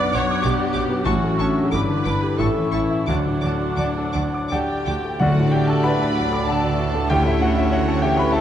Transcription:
Already playing: B1 F#2 F#3 B3 D4 F#4 D5 F#5 D6
0.00 B4
0.13 B1 B2 C#5 D5 F#5 D6
0.31 D6
0.44 B1 B2 G4 D5 F#5 D6
0.59 D5
0.73 B1 B2 F#4 D5 F#5 D6
0.90 B3
1.04 A1 A2 F#3 C#4 F#4 F#5 A5 C#6
1.24 A3
1.38 A1 A2 C#4 D4 E5 A5 C#6
1.58 F#4
1.72 G1 G2 D3 D4 E4 B4 D5 B5 D6
1.90 D3
2.04 G1 G2 D4 B5 D6
2.23 G4
2.38 A1 A2 E3 C#4 A4 E5 A5 C#6
2.58 E3
2.72 A1 A2 A3 E4 E5 A5 C#6
2.91 E4
3.06 D2 D3 F#3 D4 F#4 F#5 A5 D6
3.27 A2
3.41 D2 D3 A3 F#5 A5 D6
3.61 F#4
3.77 D2 D3 D5 F#5 A5 D6
3.98 A4
4.13 D2 D3 F#5 A5 D6
4.34 D6
4.49 D2 D3 G4 D5 F#5 G5 A5 D6
4.53 G4
4.70 D5
4.86 D2 D3 F#4 F#5 A5 D6
5.05 A3
5.19 D2 A2 D3 F#3 A3 D4 F#4 D5 F#5
5.36 A2 A3
5.51 D4 G4 G5
5.56 A3
5.67 F#4 A4 A5
5.83 D4 B4 D5 F#5 B5
5.99 A3 A4
6.16 F#3 F#5
6.31 A3 D6
6.47 D4 A4 F#5 A5
6.63 F#4 D5
6.78 D4 F#4
6.93 A3
7.09 D2 E3 C#4 E4 G4 C#5 G5
7.24 A2 A3 E4 E5
7.40 A3 C#4 F#4 F#5
7.55 E4 E5
7.59 E4
7.70 C#4 F#4 C#5 F#5
7.74 F#4
7.87 A3 A4
8.01 E3 G4 E5 G5
8.17 A3 B4 B5 C#6
8.32 C#4 A4 E5 A5

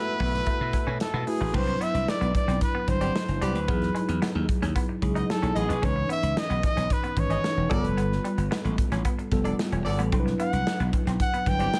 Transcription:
Already playing: A3 B3 E4 F#4 A4 B4 E5
0.20 B1 B3, kick, open hi-hat
0.34 snare
0.46 A3, kick, closed hi-hat
0.61 B2
0.73 muted clean electric guitar stroke, kick, snare, closed hi-hat
0.87 B2 C#4
1.00 A4, snare, closed hi-hat
1.14 B2 B3
1.27 A3 E4 F#4 G#4 B4, muted clean electric guitar stroke, open hi-hat
1.41 A1 A3
1.54 C2 F#3 C4 D4 E4 B4 C5, kick, crash
1.67 muted clean electric guitar stroke, closed hi-hat
1.81 B3 E5, closed hi-hat
1.94 C2, closed hi-hat
2.08 D5, snare
2.21 B1 B3, closed hi-hat
2.35 D5, muted clean electric guitar stroke, kick, closed hi-hat
2.48 B1 C4, snare, closed hi-hat
2.61 B4, kick, closed hi-hat
2.75 B3
2.88 G1 F#3 D4 E4 C5, muted clean electric guitar stroke, kick, snare, closed hi-hat
3.01 B3 C4 G4 D5, closed hi-hat
3.16 snare
3.28 F#1, closed hi-hat
3.41 C2 B3 C4 G4 B4 D5, closed hi-hat
3.55 D2, closed hi-hat
3.67 E2 F#3 B3 D#4 E4 G#4, kick, closed hi-hat
3.82 snare, closed hi-hat
3.95 G#3, closed hi-hat
4.09 E2, muted clean electric guitar stroke, closed hi-hat
4.22 B3, snare
4.35 D#2, muted clean electric guitar stroke
4.49 kick, closed hi-hat
4.62 D#2 C#4, snare, closed hi-hat
4.76 B3, kick, closed hi-hat
4.89 muted clean electric guitar stroke
5.01 C#2 F#3 D#4 E4 G#4, kick, closed hi-hat
5.15 B3 D#4 G#4 D#5, closed hi-hat
5.30 A4, snare
5.43 B1 C#4, closed hi-hat
5.55 A1 B3 G#4 D#5, muted clean electric guitar stroke, closed hi-hat
5.69 B1 B3, closed hi-hat
5.82 C#2 E3 C#4 D#4 B4 C#5, kick, closed hi-hat
5.96 muted clean electric guitar stroke
6.09 B3 E5, closed hi-hat
6.23 C#2, closed hi-hat
6.37 D#5, snare
6.50 B1 B3, closed hi-hat
6.63 D#5, muted clean electric guitar stroke, kick, closed hi-hat
6.77 B1 C#4, snare, closed hi-hat
6.90 B4, kick, closed hi-hat
7.04 B3, closed hi-hat
7.17 G#1 E3 C#4 D#4 B4 C#5, muted clean electric guitar stroke, kick, closed hi-hat
7.30 B3 C#4 G#4 D#5, closed hi-hat
7.44 snare
7.57 E1
7.70 G1 G3 B3 C#4 F4 G#4 A4 B4 D5, kick, closed hi-hat
7.78 A4
7.84 F1, closed hi-hat
7.97 G1 B3, closed hi-hat
8.12 snare
8.24 G3, closed hi-hat
8.37 G1, muted clean electric guitar stroke, closed hi-hat
8.51 B3, snare
8.65 A1, muted clean electric guitar stroke, closed hi-hat
8.78 kick, closed hi-hat
8.92 A1 C#4, snare, closed hi-hat
9.05 B3, kick, closed hi-hat
9.19 muted clean electric guitar stroke, closed hi-hat
9.31 F1 G3 B3 F4 A4, kick, snare, closed hi-hat
9.44 B3 D4 A4 D5, closed hi-hat
9.59 snare
9.72 E1 C#4, closed hi-hat
9.85 G1 B3 A4 D5, muted clean electric guitar stroke, open hi-hat
9.99 A1 B3, closed hi-hat
10.12 C2 F#3 C4 D4 E4 A4, kick, closed hi-hat
10.20 B4
10.26 muted clean electric guitar stroke, snare
10.40 B3 F#5, closed hi-hat
10.53 C2, closed hi-hat
10.67 snare
10.80 B1 B3, closed hi-hat
10.93 muted clean electric guitar stroke, kick, closed hi-hat
11.07 B1 C4, snare, closed hi-hat
11.20 F#5, kick, closed hi-hat
11.34 B3, closed hi-hat
11.46 G1 F#3 D4 E4 B4 G5, muted clean electric guitar stroke, kick, snare, closed hi-hat
11.59 B3 C4 G4 D5, closed hi-hat
11.74 snare

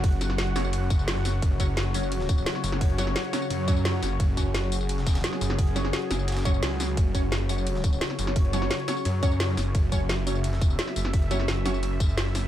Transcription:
Already playing: F#1 C#3 F#3 F#4 F#5
0.04 kick, closed hi-hat, open hi-hat
0.12 ride
0.21 snare, closed hi-hat, ride, tambourine
0.30 snare
0.38 F#1, snare, closed hi-hat, ride
0.47 ride
0.56 F#3 C#4 C#5, snare, open hi-hat, ride, tambourine
0.64 tambourine
0.73 closed hi-hat, ride
0.90 kick, closed hi-hat, ride, tambourine
0.99 tambourine
1.08 snare, closed hi-hat, ride
1.16 snare
1.25 F#1, snare, open hi-hat, ride, tambourine
1.42 F#1 C#5, kick, closed hi-hat, ride
1.60 F#1 F#3 C#4 C#5, kick, closed hi-hat, ride, tambourine
1.77 snare, closed hi-hat, ride
1.94 F#3 C#4 C#5, open hi-hat, ride, tambourine
2.03 tambourine
2.12 closed hi-hat, ride
2.20 snare
2.29 kick, closed hi-hat, ride, tambourine
2.38 tambourine
2.46 snare, closed hi-hat, ride
2.55 snare
2.64 F#1, open hi-hat, ride, tambourine
2.72 snare
2.81 kick, closed hi-hat, open hi-hat
2.90 ride
2.98 F#3 C#4 C#5, snare, closed hi-hat, ride, tambourine
3.07 snare
3.16 snare, closed hi-hat, ride
3.24 ride
3.33 F#3 C#4 C#5, snare, open hi-hat, ride, tambourine
3.42 tambourine
3.50 F#2, closed hi-hat, ride
3.68 F#3 C#4 C#5, kick, closed hi-hat, ride, tambourine
3.76 tambourine
3.85 snare, closed hi-hat, ride
3.94 snare
4.03 F#1, snare, open hi-hat, ride, tambourine
4.20 F#1 G#4, kick, closed hi-hat, ride
4.37 F#1 F#3 C#4 C#5, kick, closed hi-hat, ride, tambourine
4.54 snare, closed hi-hat, ride
4.72 open hi-hat, ride, tambourine
4.81 tambourine
4.89 closed hi-hat, ride
4.97 F1, snare
5.07 kick, snare, closed hi-hat, ride, tambourine
5.15 snare, ride, tambourine
5.24 snare, closed hi-hat, ride
5.33 snare
5.41 F#1, open hi-hat, ride, tambourine
5.50 snare
5.59 kick, closed hi-hat, open hi-hat
5.67 ride
5.76 F#3 C#4 C#5, snare, closed hi-hat, ride, tambourine
5.85 snare
5.93 snare, closed hi-hat, ride
6.02 ride
6.11 F#1, snare, open hi-hat, ride, tambourine
6.19 tambourine
6.28 snare, closed hi-hat, ride
6.32 snare, ride
6.37 snare, ride
6.45 F#3 C#4 C#5, kick, closed hi-hat, tambourine
6.54 tambourine
6.63 C#2, snare, closed hi-hat, ride
6.71 snare
6.80 snare, open hi-hat, ride, tambourine
6.97 F#1 C#5, kick, closed hi-hat, ride
7.15 F#1 F#3 C#4 C#5, kick, closed hi-hat, ride, tambourine
7.32 snare, closed hi-hat, ride
7.49 F#3 C#4 C#5, open hi-hat, ride, tambourine
7.58 tambourine
7.67 closed hi-hat, ride
7.75 snare
7.84 kick, closed hi-hat, ride, tambourine
7.93 tambourine
8.01 snare, closed hi-hat, ride
8.10 snare
8.19 F#1, open hi-hat, ride, tambourine
8.27 snare
8.36 kick, closed hi-hat, open hi-hat
8.45 ride
8.53 F#3 C#4 C#5, snare, closed hi-hat, ride, tambourine
8.62 snare
8.71 snare, closed hi-hat, ride
8.79 ride
8.88 F#3 C#4 C#5, snare, open hi-hat, ride, tambourine
8.97 tambourine
9.05 F#2, closed hi-hat, ride
9.23 F#3 C#4 C#5, kick, closed hi-hat, ride, tambourine
9.31 tambourine
9.40 snare, closed hi-hat, ride
9.49 snare
9.57 F#1, snare, open hi-hat, ride, tambourine
9.75 F#1 E5, kick, closed hi-hat, ride
9.92 F#1 F#3 C#4 C#5, kick, closed hi-hat, ride, tambourine
10.09 snare, closed hi-hat, ride
10.27 F#3 C#4 C#5, open hi-hat, ride, tambourine
10.35 tambourine
10.44 closed hi-hat, ride
10.52 F1, snare
10.61 kick, closed hi-hat, ride, tambourine
10.70 tambourine
10.79 snare, closed hi-hat, ride
10.88 snare
10.96 F#1, open hi-hat, ride, tambourine
11.05 snare
11.13 kick, closed hi-hat, open hi-hat
11.22 ride
11.31 F#3 C#4 C#5, snare, closed hi-hat, ride, tambourine
11.40 snare
11.48 F#1, snare, closed hi-hat, ride
11.57 ride
11.65 F#3 C#4 C#5, snare, open hi-hat, ride, tambourine
11.74 tambourine
11.83 closed hi-hat, ride
12.00 kick, closed hi-hat, ride, tambourine
12.09 tambourine
12.18 snare, closed hi-hat, ride
12.26 snare
12.35 F#1, snare, open hi-hat, ride, tambourine

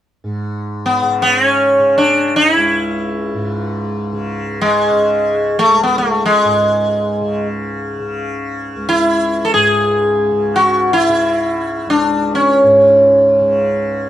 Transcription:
0.24 G#2
0.86 B3
1.02 C#3
1.22 B3
1.45 C#4
1.79 C#3
1.98 D4
2.36 D#4
2.55 C#2 E4
3.34 G#2
4.13 C#3
4.61 G#3
4.90 C#3
5.59 A3
5.67 C#2
5.83 B3
5.98 A3
6.26 G#3
6.44 G#2
7.21 C#3
7.99 C#3
8.76 C#2
8.89 E4
9.45 A4
9.54 G#2 G#4
10.31 C#3
10.56 F#4
10.93 E4
11.09 C#3
11.87 C#2 D4
12.35 C#4
12.63 G#2
13.41 C#3

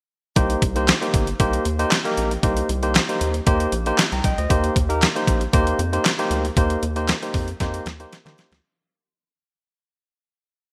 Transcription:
0.36 C2 A#3 D#4 G4 C5, kick, closed hi-hat
0.50 closed hi-hat
0.62 C2, kick, closed hi-hat
0.76 A#3 D#4 G4 C5, closed hi-hat
0.88 snare, clap, closed hi-hat
1.01 A#3 D#4 G4 C5, closed hi-hat
1.14 G1, kick, closed hi-hat
1.27 closed hi-hat
1.39 C2 A#3 D#4 G4 C5, kick, closed hi-hat
1.53 closed hi-hat
1.65 D#2, closed hi-hat
1.79 A#3 D#4 G4 C5, closed hi-hat
1.91 snare, clap, closed hi-hat
2.05 A#3 D#4 G4 A#4, closed hi-hat
2.17 A#1, closed hi-hat
2.31 closed hi-hat
2.43 C2 A#3 D#4 G4 C5, kick, closed hi-hat
2.57 closed hi-hat
2.69 C2, closed hi-hat
2.83 A#3 D#4 G4 C5, closed hi-hat
2.95 snare, clap, closed hi-hat
3.09 A#3 D#4 G4 C5, closed hi-hat
3.21 D#2, closed hi-hat
3.34 closed hi-hat
3.46 D#2 A#3 D#4 G4 C5, kick, closed hi-hat
3.60 closed hi-hat
3.72 A#1, closed hi-hat
3.86 A#3 D#4 G4 C5, closed hi-hat
3.98 snare, clap, closed hi-hat
4.12 C2 G5 A#5, closed hi-hat
4.24 C2 D#5 G5, kick, closed hi-hat
4.38 D2 C5 D#5, closed hi-hat
4.50 D#2 A#3 D#4 G4 C5, kick, closed hi-hat
4.64 closed hi-hat
4.76 D#2, kick, closed hi-hat
4.89 A#3 D#4 G4 A#4, closed hi-hat
5.02 snare, clap, closed hi-hat
5.15 A#3 D#4 G4 C5, closed hi-hat
5.27 A#1, kick, closed hi-hat
5.41 closed hi-hat
5.53 D#2 A#3 D#4 G4 C5, kick, closed hi-hat
5.67 closed hi-hat
5.79 F2, closed hi-hat
5.92 A#3 D#4 G4 C5, closed hi-hat
6.05 snare, clap, closed hi-hat
6.19 A#3 D#4 G4 C5, closed hi-hat
6.31 D2, closed hi-hat
6.45 closed hi-hat
6.57 D#2 A#3 D#4 G4 C5, kick, closed hi-hat
6.70 closed hi-hat
6.83 D#2, closed hi-hat
6.96 A#3 D#4 G4 C5, closed hi-hat
7.08 snare, clap, closed hi-hat
7.22 A#3 D#4 G4 C5, closed hi-hat
7.34 F2, kick, open hi-hat
7.48 closed hi-hat
7.60 F2 A#3 D#4 G4 C5, kick, snare, closed hi-hat
7.74 closed hi-hat
7.86 D#2, snare, closed hi-hat
8.00 A#3 D#4 G4 C5, closed hi-hat
8.13 snare, closed hi-hat
8.25 D#3 A#3 D#4 G4 C5, snare, closed hi-hat
8.38 snare, closed hi-hat
8.52 D2, snare, closed hi-hat

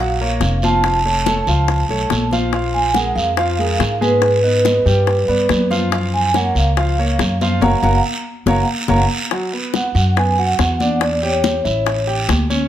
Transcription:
Already playing: A#1 F5
0.00 F#3 F#4 F#5, high conga
0.21 A#3 A#4 C#5, high conga
0.40 F1, high bongo, low bongo, high conga, short guiro
0.62 F3 F4 F5 A5, high conga, short guiro
0.84 high bongo, high conga, long guiro
1.05 A3 A4 C#5, high conga
1.26 A3 A4 C#5, high bongo, high conga, short guiro
1.47 C#2 F3 F4 F5, high bongo, short guiro
1.68 high bongo, high conga, long guiro
1.89 B1 A3 A4 C#5, high bongo, high conga
2.10 A#1, high bongo, low bongo, high conga, short guiro
2.31 F3 F4 F5, high bongo, high conga, short guiro
2.53 F3 F4 F5, high bongo, high conga, long guiro
2.74 G#5, high conga
2.94 G#3 G#4 A#4 F#5, high bongo, high conga, short guiro
3.15 F2 F5, short guiro
3.37 F3 F4 F5, high bongo, high conga, long guiro
3.59 G#3 G#4 A#4, high conga
3.80 G#2, high bongo, low bongo, high conga, short guiro
4.01 G#3 G#4 B4 G#5, high conga, short guiro
4.22 high bongo, high conga, long guiro
4.43 B3 B4 D#5, high conga
4.65 B3 B4 D#5, high bongo, high conga, short guiro
4.86 G2 G3 G4 G5, high bongo, short guiro
5.07 high bongo, high conga, long guiro
5.28 G2 B3 B4 D5, high bongo, high conga
5.49 F#2, high bongo, low bongo, high conga, short guiro
5.70 F3 F4 F5, high bongo, high conga, short guiro
5.92 F3 F4 F5, high bongo, high conga, long guiro
6.14 G#5, high conga
6.34 A#3 A#4 C#5 F#5, high bongo, high conga, short guiro
6.55 C#2 F5, short guiro
6.77 F3 F4 F5, high bongo, high conga, long guiro
6.98 A#3 A#4 C#5, high conga
7.19 F#2, high bongo, low bongo, high conga, short guiro
7.41 F3 F4 F5, high conga, short guiro
7.61 F#1 F#4 A#4 C#5 F5 F#5 A#5, low bongo, high conga, long guiro
7.82 F#1 F#4 A#4 C#5 F5 F#5 A#5, low bongo, high conga, long guiro
8.46 F#1 F#4 A#4 C#5 F5 F#5 A#5, low bongo, high conga, long guiro
8.88 F#1 F#4 A#4 C#5 F5 F#5 A#5, low bongo, high conga, long guiro
9.31 F#3 F#4, high bongo, high conga, long guiro
9.53 B3 B4, high conga
9.74 F#5, high bongo, high conga, short guiro
9.95 F#2 F#4 F#5, short guiro
10.17 B3 B4 G#5, high bongo, high conga, long guiro
10.38 F#4 F#5, high conga
10.59 E2, high bongo, low bongo, high conga, short guiro
10.80 D4 D5, high conga, short guiro
11.01 D5, high bongo, long guiro
11.22 G4 C#5 G5, high conga
11.44 high bongo, high conga, short guiro
11.65 A1 E4 E5, high bongo, short guiro
11.86 high bongo, high conga, long guiro
12.07 G4 G5, high bongo, high conga
12.29 D2, high bongo, low bongo, high conga, short guiro
12.50 C#4 C#5, high bongo, high conga, short guiro

